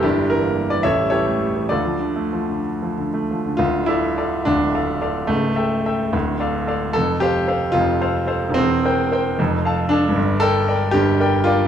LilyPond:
\new Staff \with { instrumentName = "Grand piano" } { \time 6/8 \key d \minor \tempo 4. = 73 << { g,,16 g16 e16 bes16 g16 e16 a,,16 g16 e16 a16 g16 e16 | d,16 f16 d16 a16 f16 d8 f16 d16 a16 f16 d16 | <d,, d,>8 <a' d'' f''>8 <a' d'' f''>8 <d,, d,>8 <a' d'' f''>8 <a' d'' f''>8 | <cis,, cis,>8 <a' e'' g''>8 <a' e'' g''>8 <d,, d,>8 <a' d'' f''>8 <a' d'' f''>8 |
<f,, f,>8 <a' c'' f''>8 <a' c'' f''>8 <f,, f,>8 <a' c'' f''>8 <a' c'' f''>8 | <e,, e,>8 <bes' c'' g''>8 <bes' c'' g''>8 <f,, f,>8 <a' f'' a''>8 <a' f'' a''>8 | <g,, g,>8 <bes' d'' g''>8 <bes' d'' g''>8 <g,, g,>8 <bes' d'' g''>8 <bes' d'' g''>8 | } \\ { <d' e' g'>8 bes'8. d''16 <a' cis'' e''>8 <g' a' cis''>4 | <f' a' d''>4. r4. | f'8 e'4 d'4. | a2~ a8 r8 |
a'8 g'4 f'4. | c'2~ c'8 d'8~ | d'8 a'4 g'4 f'8 | } >> }